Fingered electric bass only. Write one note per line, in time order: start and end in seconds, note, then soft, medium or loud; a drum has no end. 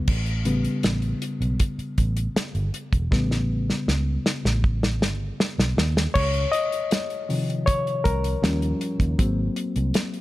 0.08 0.65 A1 loud
0.84 1.13 A1 medium
1.41 1.55 B1 medium
1.78 muted fingered electric bass stroke soft
1.98 2.27 A1 medium
2.36 muted fingered electric bass stroke soft
2.55 2.69 G1 medium
2.93 3.07 E1 medium
3.12 3.69 A1 loud
3.88 4.17 C#2 medium
4.45 5.01 A1 medium
5.01 5.30 G1 medium
5.58 5.73 B1 medium
5.77 6.06 D#2 medium
6.15 6.44 C#2 loud
8.06 8.34 C2 medium
8.43 8.72 D#2 loud
9.00 9.14 D#2 medium
9.19 9.48 G#1 loud
9.76 9.90 C2 medium